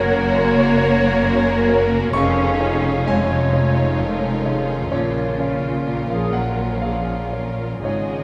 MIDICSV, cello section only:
0, 0, Header, 1, 2, 480
1, 0, Start_track
1, 0, Key_signature, -5, "minor"
1, 0, Tempo, 918836
1, 1117, Time_signature, 3, 2, 24, 8
1, 2570, Tempo, 952381
1, 3530, Tempo, 1023891
1, 4192, End_track
2, 0, Start_track
2, 0, Title_t, "Cello section"
2, 0, Program_c, 0, 48
2, 0, Note_on_c, 0, 58, 90
2, 1118, Note_off_c, 0, 58, 0
2, 1119, Note_on_c, 0, 61, 86
2, 1593, Note_off_c, 0, 61, 0
2, 1602, Note_on_c, 0, 56, 68
2, 2326, Note_off_c, 0, 56, 0
2, 2567, Note_on_c, 0, 49, 68
2, 3143, Note_off_c, 0, 49, 0
2, 3162, Note_on_c, 0, 53, 54
2, 3283, Note_on_c, 0, 54, 50
2, 3284, Note_off_c, 0, 53, 0
2, 3528, Note_on_c, 0, 53, 43
2, 3529, Note_off_c, 0, 54, 0
2, 4004, Note_on_c, 0, 49, 47
2, 4005, Note_off_c, 0, 53, 0
2, 4192, Note_off_c, 0, 49, 0
2, 4192, End_track
0, 0, End_of_file